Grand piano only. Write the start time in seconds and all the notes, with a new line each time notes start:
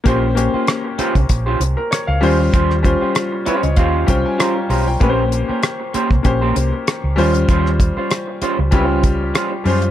0.04 A#3 C#4 G4 C5
0.35 A#3 C#4 G4 C5
1.77 A#4
1.91 C#5
2.07 F5
2.21 G3 C#4 F4 C5
2.83 G3 C#4 F4 C5
3.46 C#5
3.63 D#5
3.77 F5
4.06 G3 C#4 F4 C5 G5
4.25 G#5
4.40 F5 A#5
4.70 A#5
4.87 G5
5.00 A#3 C#4 G4 B4
5.09 C5
6.23 A#3 C#4 G4 C5
7.16 G3 C#4 F4 C5
8.71 G3 C#4 F4 G4
9.64 G3 C#4 F4 C5